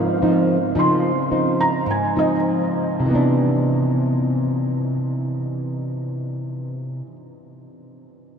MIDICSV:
0, 0, Header, 1, 3, 480
1, 0, Start_track
1, 0, Key_signature, 0, "major"
1, 0, Tempo, 542495
1, 667, Time_signature, 4, 2, 24, 8
1, 1154, Tempo, 571973
1, 2114, Tempo, 607903
1, 6805, End_track
2, 0, Start_track
2, 0, Title_t, "Felt piano"
2, 0, Program_c, 0, 0
2, 700, Note_on_c, 0, 84, 62
2, 1371, Note_off_c, 0, 84, 0
2, 1407, Note_on_c, 0, 82, 73
2, 1629, Note_off_c, 0, 82, 0
2, 1659, Note_on_c, 0, 80, 55
2, 1878, Note_off_c, 0, 80, 0
2, 1894, Note_on_c, 0, 75, 78
2, 2034, Note_off_c, 0, 75, 0
2, 6805, End_track
3, 0, Start_track
3, 0, Title_t, "Nylon-string guitar"
3, 0, Program_c, 1, 24
3, 0, Note_on_c, 1, 44, 64
3, 0, Note_on_c, 1, 53, 57
3, 0, Note_on_c, 1, 60, 53
3, 0, Note_on_c, 1, 63, 62
3, 155, Note_off_c, 1, 53, 0
3, 155, Note_off_c, 1, 60, 0
3, 156, Note_off_c, 1, 63, 0
3, 195, Note_on_c, 1, 53, 54
3, 198, Note_on_c, 1, 60, 51
3, 200, Note_on_c, 1, 63, 56
3, 499, Note_off_c, 1, 53, 0
3, 500, Note_off_c, 1, 60, 0
3, 501, Note_off_c, 1, 63, 0
3, 647, Note_off_c, 1, 44, 0
3, 665, Note_on_c, 1, 53, 49
3, 666, Note_on_c, 1, 49, 58
3, 670, Note_on_c, 1, 60, 53
3, 676, Note_on_c, 1, 63, 49
3, 978, Note_off_c, 1, 53, 0
3, 980, Note_off_c, 1, 60, 0
3, 983, Note_off_c, 1, 63, 0
3, 1158, Note_on_c, 1, 53, 44
3, 1163, Note_on_c, 1, 60, 45
3, 1163, Note_on_c, 1, 63, 47
3, 1603, Note_off_c, 1, 49, 0
3, 1623, Note_on_c, 1, 44, 54
3, 1627, Note_off_c, 1, 53, 0
3, 1628, Note_off_c, 1, 60, 0
3, 1629, Note_off_c, 1, 63, 0
3, 1873, Note_on_c, 1, 53, 51
3, 1879, Note_on_c, 1, 60, 48
3, 1880, Note_on_c, 1, 63, 53
3, 2548, Note_on_c, 1, 48, 49
3, 2550, Note_off_c, 1, 53, 0
3, 2552, Note_off_c, 1, 63, 0
3, 2553, Note_off_c, 1, 60, 0
3, 2560, Note_off_c, 1, 44, 0
3, 2594, Note_on_c, 1, 52, 57
3, 2631, Note_on_c, 1, 59, 57
3, 2667, Note_on_c, 1, 62, 64
3, 5711, Note_off_c, 1, 48, 0
3, 5757, Note_off_c, 1, 52, 0
3, 5794, Note_off_c, 1, 59, 0
3, 5831, Note_off_c, 1, 62, 0
3, 6805, End_track
0, 0, End_of_file